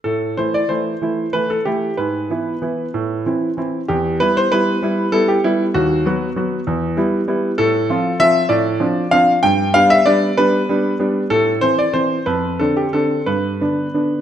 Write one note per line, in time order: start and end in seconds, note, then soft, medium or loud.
0.04 0.37 A2 soft
0.04 0.34 A4 medium
0.37 0.61 E3 soft
0.37 0.62 A3 soft
0.37 0.62 E4 soft
0.37 0.54 C5 medium
0.54 0.70 D5 medium
0.69 0.93 E3 soft
0.69 0.93 A3 soft
0.69 0.93 E4 soft
0.69 1.29 C5 medium
1.01 1.25 E3 soft
1.01 1.25 A3 soft
1.01 1.25 E4 soft
1.33 1.57 E3 soft
1.33 1.57 A3 soft
1.33 1.57 E4 soft
1.33 1.49 B4 medium
1.50 1.66 A4 medium
1.65 1.89 E3 soft
1.65 1.89 A3 soft
1.65 1.89 E4 soft
1.65 1.97 G4 medium
1.97 2.29 G#2 medium
1.97 3.56 B4 medium
2.30 2.53 E3 soft
2.30 2.53 B3 soft
2.30 2.53 E4 soft
2.62 2.84 E3 soft
2.62 2.85 B3 soft
2.62 2.85 E4 soft
2.94 3.24 A2 medium
3.26 3.48 E3 soft
3.26 3.48 C4 soft
3.26 3.49 E4 soft
3.57 3.79 E3 soft
3.57 3.80 C4 soft
3.57 3.80 E4 soft
3.88 4.19 E2 medium
3.88 4.16 G4 medium
4.20 4.43 G3 soft
4.20 4.43 B3 soft
4.20 4.43 E4 medium
4.20 4.35 B4 medium
4.37 4.51 C5 medium
4.52 4.74 G3 soft
4.52 4.74 B3 soft
4.52 4.74 E4 medium
4.52 5.09 B4 medium
4.82 5.05 G3 soft
4.82 5.05 B3 soft
4.82 5.05 E4 medium
5.12 5.35 G3 medium
5.12 5.35 B3 soft
5.12 5.36 E4 medium
5.12 5.28 A4 medium
5.28 5.44 G4 medium
5.44 5.67 G3 medium
5.44 5.67 B3 soft
5.44 5.63 E4 medium
5.74 6.05 D#2 medium
5.74 6.06 F#4 medium
6.06 6.28 F#3 medium
6.06 6.28 B3 medium
6.06 6.29 F#4 medium
6.36 6.59 F#3 soft
6.36 6.59 B3 medium
6.36 6.59 F#4 medium
6.67 6.97 E2 medium
6.97 7.19 G3 medium
6.97 7.20 B3 medium
6.97 7.20 E4 medium
7.28 7.50 G3 medium
7.28 7.50 B3 medium
7.28 7.51 E4 medium
7.58 7.89 A2 medium
7.58 8.16 A4 medium
7.90 8.12 F3 medium
7.90 8.12 C4 medium
7.90 8.12 F4 medium
8.20 8.42 F3 medium
8.20 8.42 C4 medium
8.20 8.43 F4 medium
8.20 8.51 E5 loud
8.49 8.80 A2 medium
8.49 9.12 D5 medium
8.80 9.03 F3 medium
8.80 9.03 C4 medium
8.80 9.04 D4 medium
9.11 9.35 F3 medium
9.11 9.35 C4 medium
9.11 9.35 D4 medium
9.11 9.31 F5 loud
9.43 9.74 G2 medium
9.43 9.75 G5 loud
9.74 9.97 G3 medium
9.74 9.97 B3 medium
9.74 9.98 D4 medium
9.74 9.90 F5 loud
9.90 10.06 E5 loud
10.06 10.29 G3 medium
10.06 10.29 B3 medium
10.06 10.29 D4 medium
10.06 10.34 D5 loud
10.37 10.60 G3 medium
10.37 10.60 B3 soft
10.37 10.61 D4 medium
10.37 10.93 B4 loud
10.69 10.91 G3 medium
10.69 10.92 B3 medium
10.69 10.92 D4 medium
10.99 11.22 G3 soft
10.99 11.22 B3 medium
10.99 11.23 D4 medium
11.30 11.61 A2 medium
11.30 11.49 A4 medium
11.61 11.85 E3 soft
11.61 11.85 C4 soft
11.61 11.78 C5 loud
11.79 11.95 D5 medium
11.93 12.17 E3 soft
11.93 12.18 C4 medium
11.93 12.26 C5 medium
12.26 12.59 F2 medium
12.26 12.59 B4 medium
12.59 12.84 D3 soft
12.59 12.84 C4 soft
12.59 12.85 D4 medium
12.59 12.76 A4 medium
12.77 12.93 G4 medium
12.93 13.18 D3 soft
12.93 13.19 C4 soft
12.93 13.19 D4 soft
12.93 13.27 A4 medium
13.26 13.60 G2 medium
13.26 14.21 B4 medium
13.61 13.85 D3 soft
13.61 13.85 B3 soft
13.61 13.86 D4 soft
13.94 14.18 D3 soft
13.94 14.18 B3 soft
13.94 14.19 D4 soft